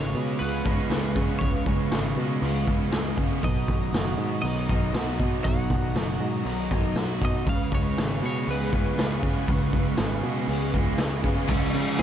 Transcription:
Already playing: picked electric bass G#1, overdriven electric guitar C#3 G#3 G#4, distorted electric guitar C#3 G#3, analog synth pad B4 F5 C#6, clean electric guitar C#5
0.15 picked electric bass B2, distorted electric guitar G#3, overdriven electric guitar G#3
0.39 picked electric bass C#2, overdriven electric guitar B3, distorted electric guitar F4, clean electric guitar B4, open hi-hat
0.65 picked electric bass C#2, overdriven electric guitar G#3, distorted electric guitar B3, kick
0.90 picked electric bass C#2, distorted electric guitar G#3, overdriven electric guitar G#4, snare, open hi-hat
1.15 picked electric bass C#3, overdriven electric guitar B3, distorted electric guitar B3, kick
1.39 picked electric bass C#2, overdriven electric guitar C#3, clean electric guitar C#5, kick, open hi-hat
1.44 distorted electric guitar C#3
1.66 picked electric bass C#2, overdriven electric guitar G#3, distorted electric guitar G#3, kick
1.91 picked electric bass G#1, distorted electric guitar C#3, overdriven electric guitar G#4, snare, open hi-hat
2.17 picked electric bass B2, distorted electric guitar G#3, overdriven electric guitar G#3
2.42 picked electric bass C#2, overdriven electric guitar B3, distorted electric guitar F4, open hi-hat
2.67 picked electric bass C#2, overdriven electric guitar G#3, distorted electric guitar B3, kick
2.92 picked electric bass C#2, distorted electric guitar G#3, overdriven electric guitar G#4, snare, open hi-hat
3.17 picked electric bass C#3, overdriven electric guitar B3, distorted electric guitar B3, kick
3.41 picked electric bass B1, overdriven electric guitar B2, distorted electric guitar B2, analog synth pad F#4 D#5 A#5, clean electric guitar D#5, kick, open hi-hat
3.68 picked electric bass B1, distorted electric guitar D#3, kick
3.93 picked electric bass F#1, distorted electric guitar F#3, overdriven electric guitar F#4, snare, open hi-hat
4.18 picked electric bass G#2, distorted electric guitar B3
4.42 picked electric bass B1, distorted electric guitar A#4, clean electric guitar D#5, open hi-hat
4.46 overdriven electric guitar D#4
4.69 picked electric bass B1, distorted electric guitar D#4, kick
4.93 picked electric bass B1, distorted electric guitar B3, overdriven electric guitar F#4, snare, open hi-hat
5.19 picked electric bass B2, distorted electric guitar D#4, overdriven electric guitar D#4, kick
5.44 picked electric bass B1, distorted electric guitar B2, overdriven electric guitar B2, clean electric guitar F#5, analog synth pad A#5, kick, open hi-hat
5.70 picked electric bass B1, distorted electric guitar D#3, kick
5.95 picked electric bass F#1, distorted electric guitar F#3, overdriven electric guitar F#4, snare, open hi-hat
6.20 picked electric bass G#2, distorted electric guitar B3
6.46 picked electric bass B1, overdriven electric guitar D#4, distorted electric guitar A#4, open hi-hat
6.71 picked electric bass B1, distorted electric guitar D#4, kick
6.95 picked electric bass B1, distorted electric guitar B3, overdriven electric guitar F#4, snare, open hi-hat
7.21 picked electric bass B2, overdriven electric guitar D#4, distorted electric guitar D#4, clean electric guitar D#5, kick
7.45 picked electric bass C#2, overdriven electric guitar C#3, distorted electric guitar C#3, analog synth pad B4 F5 C#6, kick, open hi-hat
7.49 clean electric guitar F5
7.72 picked electric bass C#2, overdriven electric guitar G#3, distorted electric guitar G#3, clean electric guitar C#5, kick
7.97 picked electric bass G#1, distorted electric guitar G#3, overdriven electric guitar G#4, snare, open hi-hat
8.22 picked electric bass B2, overdriven electric guitar G#3, distorted electric guitar B3, clean electric guitar C#5
8.47 picked electric bass C#2, overdriven electric guitar B3, distorted electric guitar G#4, clean electric guitar B4, open hi-hat
8.73 picked electric bass C#2, overdriven electric guitar G#3, distorted electric guitar F4, kick
8.97 picked electric bass C#2, distorted electric guitar B3, overdriven electric guitar G#4, snare, open hi-hat
9.23 picked electric bass C#3, overdriven electric guitar B3, distorted electric guitar F4, kick
9.48 picked electric bass C#2, distorted electric guitar C#3, overdriven electric guitar C#3, kick, open hi-hat
9.73 picked electric bass C#2, distorted electric guitar G#3, overdriven electric guitar G#3, kick
9.97 picked electric bass G#1, distorted electric guitar G#3, overdriven electric guitar G#4, snare, open hi-hat
10.23 picked electric bass B2, overdriven electric guitar G#3, distorted electric guitar B3
10.48 picked electric bass C#2, overdriven electric guitar B3, distorted electric guitar G#4, open hi-hat
10.74 picked electric bass C#2, overdriven electric guitar G#3, distorted electric guitar F4, kick
10.98 picked electric bass C#2, distorted electric guitar B3, overdriven electric guitar G#4, snare, open hi-hat
11.24 picked electric bass C#3, overdriven electric guitar B3, distorted electric guitar F4, kick
11.48 picked electric bass C#2, overdriven electric guitar C#3 F3 G#3 C#4 F4, distorted electric guitar C#3 G#3 C#4, analog synth pad F5 C#6, kick, crash
11.73 picked electric bass C#3, distorted electric guitar C#4, crash
11.78 distorted electric guitar G#3
11.98 clean electric guitar G#4, snare, crash

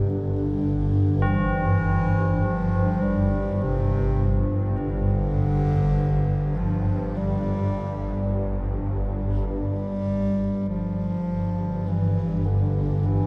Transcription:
Already playing: synth drone G1 G2, bass clarinet C3, singing bowl D4 D5
0.09 bass clarinet D3
1.22 tubular bells C4
1.27 bass clarinet E3
2.45 bass clarinet F3
3.02 bass clarinet G3
3.63 bass clarinet C3
4.80 bass clarinet D3
6.57 bass clarinet F3
7.17 bass clarinet G3
9.50 synth drone G1 G2, bass clarinet G3
10.68 bass clarinet F3
11.88 bass clarinet E3
12.45 bass clarinet D3
13.05 bass clarinet E3

